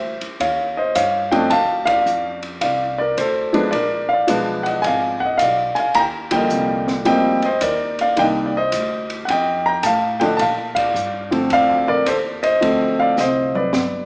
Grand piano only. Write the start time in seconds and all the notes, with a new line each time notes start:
Already playing: C5 E5
0.41 C#5 F5
0.77 C5 D#5
0.96 C#5 F5
1.32 F3 A3 C4 D4 D#5 G5
1.50 F5 A5
1.85 D5 F5
2.61 D5 F5
2.98 A#4 D5
3.18 A4 C5
3.53 F3 G#3 B3 D4
3.71 A#4 D5
4.09 F5
4.13 D5
4.27 F3 G#3 B3 D4
4.63 F#5
4.67 D#5
4.82 G#5
4.87 F5
5.20 F#5
5.25 D#5
5.38 F5
5.43 D5
5.75 G#5
5.79 F5
5.95 G5 A#5
6.31 D3 F3 G3 A#3 G5
6.36 D#5
7.05 F3 G3 A#3 C4 D#5 G5
7.44 C5 D#5
7.62 A#4 D5
8.01 D5 F5
8.16 D#3 G3 A#3 D4 G5
8.20 D#5
8.46 D5
8.57 C5 D#5
9.25 F#5
9.30 D#5 G5
9.66 G5 A#5
9.83 F5 A5
10.20 D3 F3 A3 D4 D#5 G5
10.37 A5
10.41 F5
10.75 D5 F5
11.31 D3 F3 A3 C4
11.53 D5 F5
11.88 A#4 D5
12.07 A4 C5
12.43 C5 D#5
12.61 D3 F3 A3 C4
13.00 D5 F5
13.18 C5 D#5
13.55 B4 D5